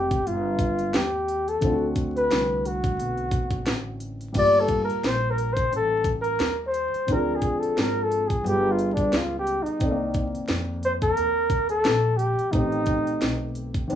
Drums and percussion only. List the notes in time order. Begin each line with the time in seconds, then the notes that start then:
0.11 kick, closed hi-hat
0.27 closed hi-hat
0.59 kick, closed hi-hat
0.79 closed hi-hat
0.94 snare, closed hi-hat
1.28 closed hi-hat
1.48 closed hi-hat
1.61 kick, closed hi-hat
1.96 kick, closed hi-hat
2.17 closed hi-hat
2.31 snare, closed hi-hat
2.65 closed hi-hat
2.84 kick, closed hi-hat
3.00 closed hi-hat
3.17 closed hi-hat
3.31 kick, closed hi-hat
3.51 kick, closed hi-hat
3.66 snare, closed hi-hat
4.00 closed hi-hat
4.21 closed hi-hat
4.34 kick, closed hi-hat, crash
4.68 kick, closed hi-hat
4.90 closed hi-hat
5.04 snare, closed hi-hat
5.38 closed hi-hat
5.57 kick, closed hi-hat
5.73 closed hi-hat
6.04 kick, closed hi-hat
6.24 closed hi-hat
6.39 snare, closed hi-hat
6.74 closed hi-hat
6.94 closed hi-hat
7.08 kick, closed hi-hat
7.42 kick, closed hi-hat
7.63 closed hi-hat
7.77 snare, closed hi-hat
8.12 closed hi-hat
8.30 kick, closed hi-hat
8.46 closed hi-hat
8.79 closed hi-hat
8.97 kick, closed hi-hat
9.12 snare, closed hi-hat
9.47 closed hi-hat
9.66 closed hi-hat
9.80 kick, closed hi-hat
10.14 kick, closed hi-hat
10.35 closed hi-hat
10.48 snare, closed hi-hat
10.83 closed hi-hat
11.02 kick, closed hi-hat
11.17 closed hi-hat
11.50 kick, closed hi-hat
11.69 closed hi-hat
11.84 snare, closed hi-hat
12.19 closed hi-hat
12.39 closed hi-hat
12.53 kick, closed hi-hat
12.72 closed hi-hat
12.86 kick, closed hi-hat
13.07 closed hi-hat
13.21 snare, closed hi-hat
13.55 closed hi-hat
13.74 kick, closed hi-hat
13.90 closed hi-hat